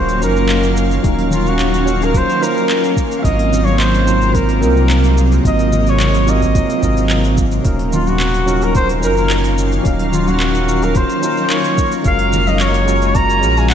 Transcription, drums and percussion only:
0.09 open hi-hat, shaker
0.22 shaker
0.37 shaker
0.49 clap, open hi-hat, shaker
0.63 open hi-hat, shaker
0.77 shaker
0.91 open hi-hat, shaker
1.04 kick, open hi-hat, shaker
1.19 open hi-hat
1.31 low conga, shaker
1.46 high conga, shaker
1.59 clap, open hi-hat, shaker
1.74 open hi-hat, shaker
1.87 shaker
2.02 open hi-hat, shaker
2.14 kick, open hi-hat, shaker
2.30 open hi-hat, shaker
2.43 shaker
2.57 shaker
2.69 clap, open hi-hat, shaker
2.84 open hi-hat, shaker
2.97 kick, shaker
3.11 open hi-hat, shaker
3.24 kick, open hi-hat, shaker
3.39 open hi-hat
3.52 low conga, shaker
3.66 high conga, shaker
3.80 clap, open hi-hat, shaker
3.94 open hi-hat, shaker
4.07 shaker
4.22 open hi-hat, shaker
4.34 kick, open hi-hat, shaker
4.49 open hi-hat, shaker
4.63 shaker
4.77 shaker
4.90 clap, open hi-hat, shaker
5.04 open hi-hat, shaker
5.18 shaker
5.32 open hi-hat, shaker
5.45 kick, open hi-hat, shaker
5.59 open hi-hat, shaker
5.72 low conga, shaker
5.86 open hi-hat, high conga, shaker
6.00 clap, open hi-hat, shaker
6.14 open hi-hat, shaker
6.27 high conga, shaker
6.42 kick, open hi-hat, shaker
6.55 kick, open hi-hat, shaker
6.70 open hi-hat, shaker
6.83 kick, shaker
6.97 open hi-hat, high conga, shaker
7.10 clap, open hi-hat, shaker
7.24 open hi-hat, shaker
7.37 kick, shaker
7.51 open hi-hat, shaker
7.65 kick, open hi-hat, shaker
7.79 open hi-hat
7.93 low conga, shaker
8.07 high conga, shaker
8.20 clap, open hi-hat, shaker
8.34 open hi-hat, shaker
8.48 shaker
8.62 open hi-hat, shaker
8.75 kick, open hi-hat, shaker
8.89 open hi-hat, shaker
9.03 shaker
9.17 shaker
9.30 clap, open hi-hat, shaker
9.44 open hi-hat, shaker
9.58 shaker
9.72 open hi-hat, shaker
9.85 kick, open hi-hat, shaker
9.99 open hi-hat
10.13 low conga, shaker
10.27 high conga, shaker
10.40 clap, open hi-hat, shaker
10.55 open hi-hat, shaker
10.69 shaker
10.82 open hi-hat, shaker
10.95 kick, open hi-hat, shaker
11.10 open hi-hat, shaker
11.23 shaker
11.37 shaker
11.50 clap, open hi-hat, shaker
11.64 open hi-hat, shaker
11.78 kick, shaker
11.92 open hi-hat, shaker
12.04 kick, open hi-hat, shaker
12.19 open hi-hat
12.33 low conga, shaker
12.47 high conga, shaker
12.60 clap, open hi-hat, shaker
12.74 open hi-hat, shaker
12.88 shaker
13.02 open hi-hat, shaker
13.15 kick, open hi-hat, shaker
13.30 open hi-hat, shaker
13.43 shaker
13.57 shaker
13.70 clap, open hi-hat, shaker

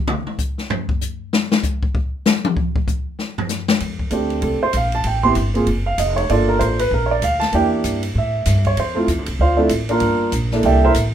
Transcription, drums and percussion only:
0.08 mid tom
0.27 mid tom
0.38 kick, hi-hat pedal
0.58 snare
0.70 floor tom
0.89 kick
1.01 hi-hat pedal
1.33 snare
1.52 snare
1.63 kick, hi-hat pedal
1.83 kick
1.95 kick
2.25 snare, hi-hat pedal
2.45 high tom
2.57 kick
2.76 kick
2.88 kick, hi-hat pedal
3.19 snare
3.38 floor tom
3.49 snare, hi-hat pedal
3.68 snare
3.80 kick, ride
3.99 kick
4.11 kick, hi-hat pedal, ride
4.30 ride
4.42 kick, ride
4.73 kick, hi-hat pedal, ride
4.92 ride
5.04 kick, ride
5.24 kick
5.35 kick, hi-hat pedal, ride
5.55 ride
5.67 kick, ride
5.98 kick, hi-hat pedal, ride
6.18 ride
6.29 kick, ride
6.61 hi-hat pedal, ride
6.79 ride
6.91 kick
7.22 kick, hi-hat pedal, ride
7.41 snare, ride
7.53 kick, ride
7.84 kick, hi-hat pedal, ride
8.03 ride
8.15 kick
8.46 kick, snare, hi-hat pedal, ride
8.65 kick, ride
8.77 kick, ride
9.08 kick, hi-hat pedal, ride
9.26 ride
9.39 kick
9.69 kick, hi-hat pedal, ride
9.89 ride
10.00 kick, ride
10.32 kick, hi-hat pedal, ride
10.51 snare
10.63 kick, ride
10.94 kick, hi-hat pedal, ride

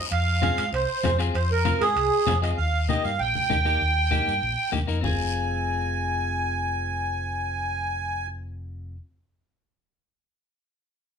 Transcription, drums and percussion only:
0.12 high timbale
0.42 high conga, high timbale, short guiro
0.58 high timbale, short guiro
0.73 high timbale, long guiro
1.03 high conga, high timbale, short guiro
1.19 high timbale, short guiro
1.35 high timbale, long guiro
1.65 high conga, high timbale, short guiro
1.82 high timbale, short guiro
1.97 high timbale, long guiro
2.27 high conga, high timbale, low timbale, short guiro
2.43 high timbale, short guiro
2.59 long guiro
2.89 high conga, short guiro
3.04 short guiro
3.19 long guiro
3.35 high conga
3.50 high conga, short guiro
3.66 short guiro
3.82 long guiro
4.12 high conga, short guiro
4.28 short guiro
4.43 long guiro
4.73 high conga, short guiro
4.89 short guiro
5.04 low conga, long guiro

